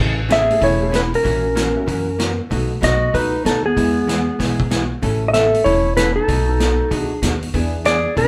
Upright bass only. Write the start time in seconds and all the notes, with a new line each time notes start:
0.00 A1
0.61 E1
1.25 A#1
1.88 F#2
2.51 B1
2.82 B1
3.14 C#2
3.45 D#2
3.77 E2
4.39 B1
5.02 A1
5.65 E1
6.28 B1
6.91 C#2
7.22 D#2
7.54 E2
8.17 B1